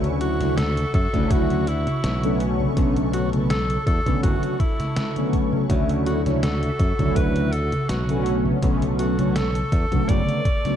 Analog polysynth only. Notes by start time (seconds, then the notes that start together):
Already playing: D3 F#3 A3 C#4 E4
0.40 D3 F#3 A3 C#4 E4
1.13 D3 F#3 A3 C#4 E4
2.23 D3 F#3 A3 B3 C#4
2.76 D3 F#3 A3 B3 C#4
3.32 D3 F#3 A3 B3 C#4
4.06 D3 F#3 A3 B3 C#4
5.15 D3 F#3 A3 B3 C#4
5.69 D3 F#3 A3 C#4 E4
6.25 D3 F#3 A3 C#4 E4
6.98 D3 F#3 A3 C#4 E4
8.08 D3 F#3 A3 B3 C#4
8.61 D3 F#3 A3 B3 C#4
9.18 D3 F#3 A3 B3 C#4
9.91 C#3 D3 F#3 A3 B3
10.64 D3 F#3 A3 B3 C#4